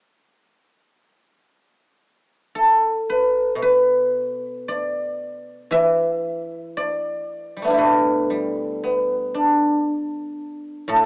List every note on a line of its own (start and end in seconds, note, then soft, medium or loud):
0.00 1.36 G4 medium
2.55 4.75 A4 medium
3.10 3.62 B4 medium
3.55 5.71 B2 medium
3.62 5.67 B4 medium
4.68 6.53 D5 medium
5.71 8.81 E3 medium
5.71 7.44 E5 loud
6.77 8.61 D5 loud
7.57 7.84 G3 soft
7.62 10.94 A3 soft
7.62 8.83 B3 soft
7.67 9.34 D4 soft
7.67 10.31 E4 soft
7.74 10.88 B2 medium
7.74 10.09 G4 soft
7.78 9.97 A4 medium
7.78 9.83 B4 medium
8.30 10.36 G3 soft
8.84 10.90 B3 soft
9.35 11.05 D4 soft
10.88 11.05 A2 medium
10.88 10.96 A4 medium
10.96 11.04 A4 medium